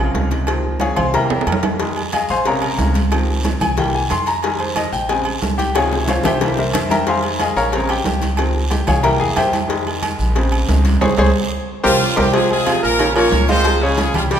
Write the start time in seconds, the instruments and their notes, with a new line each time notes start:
Already playing: upright bass A#1, grand piano C3 C#3 G#3 F4 A#4 C#5 F5
0.15 upright bass C#2, cowbell, high conga, low timbale
0.31 cowbell, high conga, low agogo
0.46 grand piano D#3 F3 C4, cowbell, high conga, low agogo
0.64 high conga
0.80 grand piano G#4 C#5 F5 G#5, cowbell, high conga, low timbale, low agogo
0.96 upright bass C2, grand piano C5 F5 G#5 C6, high conga, low conga, low agogo
1.14 grand piano E3 G3 A#3 A#4 E5 G5 A#5, cowbell, high conga, low conga, low agogo
1.30 upright bass E2, high conga, high timbale
1.41 high timbale
1.47 upright bass F2, cowbell, high conga, low agogo
1.52 low timbale
1.63 cowbell, high conga, low timbale, low agogo
1.80 grand piano D#3 G3 G#3, cowbell, high conga, low agogo, long guiro
1.97 high conga, low agogo
2.12 grand piano G#4 D#5 F5 G#5, cowbell, high conga, low timbale, low agogo, short guiro
2.29 upright bass A#1, grand piano C5 F5 G#5 C6, high conga, short guiro
2.45 grand piano C3 C#3 G#3 A#4 C#5 F5 A#5, cowbell, high conga, low agogo, long guiro
2.62 high conga, low agogo
2.78 upright bass C#2, cowbell, high conga, low timbale, short guiro
2.94 cowbell, high conga, low agogo, short guiro
3.11 grand piano D#3 F3 C4, cowbell, high conga, low agogo, long guiro
3.29 high conga
3.43 cowbell, high conga, low timbale, low agogo, short guiro
3.60 upright bass C2, grand piano G#5, high conga, low conga, low agogo, short guiro
3.77 grand piano E3 G3 A#3 G5, cowbell, high conga, low conga, low agogo, long guiro
3.95 grand piano G#5, high conga
4.10 upright bass F2, grand piano C6, cowbell, high conga, low timbale, low agogo, short guiro
4.26 grand piano A#5, cowbell, low agogo, short guiro
4.43 grand piano D#3 G3 G#3 G#5, cowbell, high conga, low agogo, long guiro
4.59 grand piano C5, high conga, low agogo
4.76 grand piano D#5, cowbell, high conga, low timbale, low agogo, short guiro
4.93 upright bass A#1, grand piano G5, high conga, short guiro
5.09 grand piano C#3 G#3 C4 G#5, cowbell, high conga, low agogo, long guiro
5.25 high conga, low agogo
5.42 upright bass C#2, cowbell, high conga, low timbale, short guiro
5.58 grand piano G4 G5, cowbell, high conga, low agogo, short guiro
5.75 grand piano C3 D#3 F3 G#4 C#5 F5 G#5, cowbell, high bongo, high conga, low agogo, long guiro
5.92 high bongo, high conga
6.04 grand piano E5, high conga, short guiro
6.08 grand piano F4 C5 C#5 F5, cowbell, high bongo, low timbale, low agogo
6.23 upright bass C2, grand piano G4 C5 E5 G5, low bongo, high conga, low conga, low agogo, short guiro
6.41 grand piano E3 G3 A#3, cowbell, low bongo, high conga, low agogo, long guiro
6.57 grand piano E4 A#4 C5 E5, low bongo, high conga
6.74 upright bass F2, cowbell, low bongo, high conga, low timbale, low agogo, short guiro
6.89 grand piano A#4 E5 G5 A#5, cowbell, low bongo, high conga, low agogo, short guiro
7.06 grand piano D#3 G3 G#3 C5 F5 G#5 C6, cowbell, high conga, low agogo, long guiro
7.22 high conga, low agogo
7.39 grand piano G#4 D#5 F5 G#5, cowbell, high conga, low timbale, low agogo, short guiro
7.56 upright bass A#1, grand piano A#4 C#5 F5 A#5, high conga, short guiro
7.71 grand piano C#3 G#3 C4, cowbell, high conga, low agogo, long guiro
7.88 grand piano G4 G5, high conga, low agogo
8.04 upright bass C#2, cowbell, high conga, low timbale, short guiro
8.21 cowbell, high conga, low agogo, short guiro
8.37 grand piano D#3 F3 C4, cowbell, high conga, low agogo, long guiro
8.55 high conga
8.70 grand piano G4 G5, cowbell, high conga, low timbale, low agogo, short guiro
8.87 upright bass C2, grand piano G#4 C#5 F5 G#5, high conga, low conga, low agogo, short guiro
9.03 grand piano E3 G3 A#3 A#4 E5 G5 A#5, cowbell, high conga, low conga, low agogo, long guiro
9.20 upright bass E2, grand piano G#4 G#5, high conga
9.36 upright bass F2, grand piano G4 C5 E5 G5, cowbell, high conga, low timbale, low agogo, short guiro
9.53 cowbell, high conga, low agogo, short guiro
9.68 grand piano D#3 G3 G#3, cowbell, high conga, low agogo, long guiro
9.87 high conga, low agogo
10.03 cowbell, high conga, low timbale, low agogo, short guiro
10.19 upright bass A#1, high conga, short guiro
10.35 grand piano C#3 G#3 C4, cowbell, high conga, low agogo, long guiro
10.52 high conga, low agogo
10.69 upright bass C#2, cowbell, high conga, low timbale, short guiro
10.85 cowbell, high conga, low agogo, short guiro
11.01 upright bass C#2, grand piano G#4 C5 C#5, cowbell, high conga, high timbale, long guiro
11.18 upright bass C#2, grand piano G#4 C5 C#5, cowbell, high conga, high timbale, long guiro
11.84 upright bass C2, horn section F3 C#4 F4, grand piano G4 A#4 C5, cowbell, high conga, high timbale, long guiro
12.16 upright bass C2, horn section G3 E4 G4, grand piano G4 A#4 C5, cowbell, high conga, high timbale, long guiro
12.33 grand piano C3 C4 C5, baritone saxophone F3, horn section G#3 F4 G#4, cowbell, high conga, low agogo, long guiro
12.50 horn section G#3 F4 G#4, high conga, low agogo
12.66 baritone saxophone C3, grand piano F3 F4 F5, cowbell, high conga, low timbale, low agogo, short guiro
12.83 upright bass A#1, grand piano A#2 A#3 A#4, horn section A#3 F4 A#4, high conga, short guiro
12.99 grand piano C#3 C#4 C#5, baritone saxophone D#3, cowbell, high conga, low agogo, long guiro
13.16 grand piano A#2 A#3 A#4, baritone saxophone F3, horn section C#4 A#4 C#5, high conga, low agogo
13.32 upright bass C#2, cowbell, high conga, low timbale, short guiro
13.48 grand piano F3 F4 F5, baritone saxophone G#3, horn section C4 G#4 C5, cowbell, high conga, low agogo, short guiro
13.64 cowbell, high conga, low agogo, long guiro
13.81 grand piano C#3 C#4 C#5, horn section G#3 F4 G#4, high conga
13.98 cowbell, high conga, low timbale, low agogo, short guiro
14.14 upright bass C2, horn section F3 C#4 F4, grand piano G3 G4 G5, high conga, low conga, low agogo, short guiro
14.31 baritone saxophone G3, horn section G3 E4 G4, cowbell, high conga, low conga, low agogo, long guiro